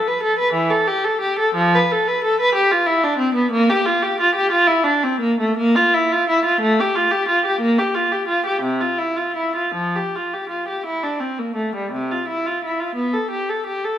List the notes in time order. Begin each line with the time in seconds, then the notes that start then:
0.07 B4
0.23 A4
0.39 B4
0.53 E3
0.70 A4
0.88 G4
1.05 A4
1.21 G4
1.39 A4
1.55 F3
1.75 B4
1.92 A4
2.08 B4
2.24 A4
2.41 B4
2.55 G4
2.72 F4
2.87 E4
3.04 D4
3.18 C4
3.34 B3
3.51 A#3
3.70 G4
3.86 F4
4.03 G4
4.20 F4
4.35 G4
4.51 F4
4.67 E4
4.84 D4
5.03 C4
5.20 A#3
5.40 A3
5.57 A#3
5.76 F4
5.94 E4
6.12 F4
6.29 E4
6.45 F4
6.61 A3
6.80 G4
6.96 F4
7.11 G4
7.28 F4
7.46 G4
7.61 A#3
7.79 G4
7.95 F4
8.12 G4
8.28 F4
8.46 G4
8.62 C3
8.81 F4
8.98 E4
9.17 F4
9.36 E4
9.56 F4
9.74 F3
9.96 G4
10.16 F4
10.34 G4
10.49 F4
10.68 G4
10.86 E4
11.03 D4
11.20 C4
11.39 A#3
11.55 A3
11.75 G3
11.92 C3
12.12 F4
12.28 E4
12.46 F4
12.64 E4
12.80 F4
12.95 B3
13.13 A4
13.31 G4
13.49 A4
13.66 G4
13.85 A4